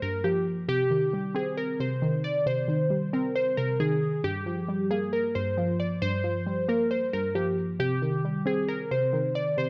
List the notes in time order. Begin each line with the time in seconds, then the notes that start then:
Already playing: F3 G3 A#3
0.02 G2 A#4
0.24 F3 G4
0.68 C3 G4
0.91 D#3
1.13 G3
1.34 C4 G#4
1.57 A#4
1.80 C3 C5
2.02 D#3
2.24 D5
2.46 C3 C5
2.68 D#3
2.90 G3
3.13 C4 A#4
3.36 C5
3.57 C3 A#4
3.80 D#3 G#4
4.24 G2 G4
4.46 F3
4.69 G3
4.91 A#3 G#4
5.13 A#4
5.35 G2 C5
5.57 F3
5.80 D5
6.02 G2 C5
6.24 F3
6.46 G3
6.68 A#3 A#4
6.91 C5
7.13 G2 A#4
7.35 F3 G4
7.79 C3 G4
8.02 D#3
8.24 G3
8.46 C4 G#4
8.68 A#4
8.91 C3 C5
9.13 D#3
9.35 D5
9.57 C3 C5